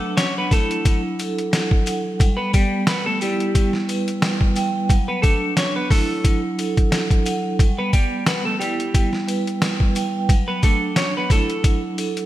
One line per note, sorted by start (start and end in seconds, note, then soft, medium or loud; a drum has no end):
0.00 0.87 F#3 loud
0.00 0.15 A3 medium
0.00 1.52 D4 medium
0.00 0.15 A4 medium
0.17 0.35 C#4 medium
0.17 0.34 C#5 medium
0.17 snare loud
0.17 closed hi-hat medium
0.17 sleigh bells medium
0.38 0.51 B3 medium
0.38 0.51 B4 medium
0.51 1.02 A3 medium
0.51 2.20 E4 medium
0.51 1.01 A4 medium
0.51 kick loud
0.51 snare soft
0.51 closed hi-hat medium
0.51 sleigh bells medium
0.71 closed hi-hat medium
0.85 1.50 F#3 medium
0.85 kick loud
0.85 closed hi-hat loud
0.85 sleigh bells soft
1.19 2.21 A4 medium
1.19 closed hi-hat medium
1.19 sleigh bells medium
1.38 closed hi-hat medium
1.52 2.20 F#3 medium
1.52 snare loud
1.52 closed hi-hat medium
1.52 sleigh bells medium
1.71 kick medium
1.86 2.20 F#5 medium
1.86 closed hi-hat medium
1.86 sleigh bells medium
2.20 3.54 G3 medium
2.20 kick loud
2.20 closed hi-hat medium
2.20 sleigh bells soft
2.37 2.52 B3 medium
2.37 2.51 B4 medium
2.53 2.85 G3 medium
2.53 4.22 B3 medium
2.53 2.84 G4 medium
2.53 kick loud
2.53 closed hi-hat medium
2.53 sleigh bells medium
2.87 3.05 B3 medium
2.87 3.05 B4 medium
2.87 snare loud
2.87 closed hi-hat medium
2.87 sleigh bells medium
3.06 3.20 A3 medium
3.06 3.20 A4 medium
3.21 3.71 G3 medium
3.21 4.90 E4 medium
3.21 3.71 G4 medium
3.21 closed hi-hat medium
3.21 sleigh bells medium
3.40 closed hi-hat medium
3.55 4.21 G3 medium
3.55 kick loud
3.55 closed hi-hat medium
3.55 sleigh bells soft
3.73 snare soft
3.88 4.90 B4 medium
3.88 closed hi-hat medium
3.88 sleigh bells medium
4.08 closed hi-hat medium
4.22 4.90 G3 medium
4.22 snare loud
4.22 closed hi-hat medium
4.22 sleigh bells medium
4.41 kick medium
4.55 4.90 G5 medium
4.55 closed hi-hat medium
4.55 sleigh bells medium
4.89 6.26 F#3 loud
4.89 kick loud
4.89 closed hi-hat medium
4.89 sleigh bells medium
5.08 5.22 B3 medium
5.08 5.22 B4 medium
5.22 5.54 A3 medium
5.22 6.92 D4 medium
5.22 5.53 A4 medium
5.22 kick loud
5.22 closed hi-hat medium
5.22 sleigh bells medium
5.57 5.75 C#4 medium
5.57 5.74 C#5 medium
5.57 snare loud
5.57 closed hi-hat medium
5.57 sleigh bells medium
5.76 5.90 B3 medium
5.76 5.90 B4 medium
5.91 6.40 A3 medium
5.91 7.60 E4 medium
5.91 6.40 A4 medium
5.91 kick loud
5.91 snare soft
5.91 open hi-hat medium
5.91 sleigh bells medium
6.25 6.89 F#3 medium
6.25 kick loud
6.25 closed hi-hat loud
6.25 sleigh bells soft
6.58 7.60 A4 medium
6.58 closed hi-hat medium
6.58 sleigh bells medium
6.77 kick medium
6.77 closed hi-hat medium
6.91 7.59 F#3 medium
6.91 snare loud
6.91 closed hi-hat medium
6.91 sleigh bells medium
7.10 kick medium
7.10 closed hi-hat medium
7.25 7.59 F#5 medium
7.25 closed hi-hat medium
7.25 sleigh bells medium
7.59 8.93 G3 medium
7.59 kick loud
7.59 closed hi-hat medium
7.59 sleigh bells soft
7.79 7.92 B3 medium
7.79 7.92 B4 medium
7.93 8.24 G3 medium
7.93 9.62 B3 medium
7.93 8.24 G4 medium
7.93 kick loud
7.93 closed hi-hat medium
7.93 sleigh bells medium
8.26 8.44 B3 medium
8.26 8.44 B4 medium
8.26 snare loud
8.26 closed hi-hat medium
8.26 sleigh bells medium
8.45 8.59 A3 medium
8.45 8.59 A4 medium
8.59 9.09 G3 medium
8.59 10.29 E4 medium
8.59 9.09 G4 medium
8.59 closed hi-hat medium
8.59 sleigh bells medium
8.80 closed hi-hat medium
8.94 9.61 G3 medium
8.94 kick loud
8.94 closed hi-hat medium
8.94 sleigh bells medium
9.13 snare soft
9.28 10.29 B4 medium
9.28 closed hi-hat medium
9.28 sleigh bells medium
9.47 closed hi-hat medium
9.62 10.29 G3 medium
9.62 snare loud
9.62 closed hi-hat medium
9.62 sleigh bells medium
9.80 kick medium
9.95 10.29 G5 medium
9.95 closed hi-hat medium
9.95 sleigh bells medium
10.29 11.65 F#3 loud
10.29 kick loud
10.29 closed hi-hat medium
10.29 sleigh bells medium
10.48 10.62 B3 medium
10.48 10.61 B4 medium
10.62 10.94 A3 medium
10.62 12.26 D4 medium
10.62 10.94 A4 medium
10.62 kick loud
10.62 closed hi-hat medium
10.62 sleigh bells medium
10.96 11.13 C#4 medium
10.96 11.13 C#5 medium
10.96 snare loud
10.96 closed hi-hat medium
10.96 sleigh bells medium
11.17 11.30 B3 medium
11.17 11.30 B4 medium
11.30 11.81 A3 medium
11.30 12.26 E4 medium
11.30 11.80 A4 medium
11.30 kick loud
11.30 snare soft
11.30 closed hi-hat medium
11.30 sleigh bells medium
11.50 closed hi-hat medium
11.64 12.26 F#3 medium
11.64 kick loud
11.64 closed hi-hat loud
11.64 sleigh bells medium
11.98 12.26 A4 medium
11.98 closed hi-hat medium
11.98 sleigh bells medium
12.17 closed hi-hat medium